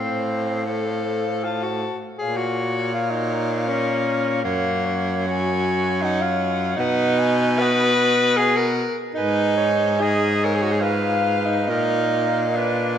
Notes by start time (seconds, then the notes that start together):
Already playing: A2 C4 C5 F5
0.65 A4 C5 F5
1.43 F4 A5
1.62 F#4
2.18 A#2 G#4 C#5 F5
2.36 F#4
2.93 F4 F5
3.11 D#4
3.67 C#4 A#4
4.43 F#2 A#3 C#5 F#5
4.86 C#5
5.27 F#4 G#5
6.02 D#4 F#5
6.22 F4
6.76 B2 D#4 B4 F#5
7.19 G#5
7.58 B4 D#5 F#5
8.37 G#4 F#5
8.56 A#4
9.15 G#2 D#4 B4 G#5
9.58 C#5
10.00 G#4 D#5
10.44 A#4 C#5
10.54 G#4
10.62 F#4
10.72 G#4
10.80 F4 B4 F5
11.46 D#4
11.67 A#2 D#4 A#4 F5
12.54 D4 B4